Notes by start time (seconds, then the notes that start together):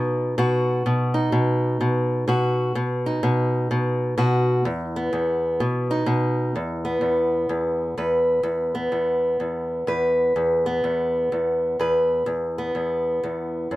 Already playing: B2 D#4
0.38 B2 F#4
0.86 B2
1.14 D#4
1.32 B2
1.81 B2
2.28 B2 F#4
2.75 B2
3.06 D#4
3.23 B2
3.71 B2
4.18 B2 F#4
4.65 E2
4.96 B3
5.13 E2
5.60 B2
5.91 D#4
6.06 B2
6.56 E2
6.85 B3
7.01 E2
7.49 E2
7.98 E2 B4
8.43 E2
8.75 B3
8.92 E2
9.40 E2
9.87 E2 B4
10.36 E2
10.66 B3
10.84 E2
11.32 E2
11.79 E2 B4
12.26 E2
12.58 B3
12.75 E2
13.23 E2
13.71 F#2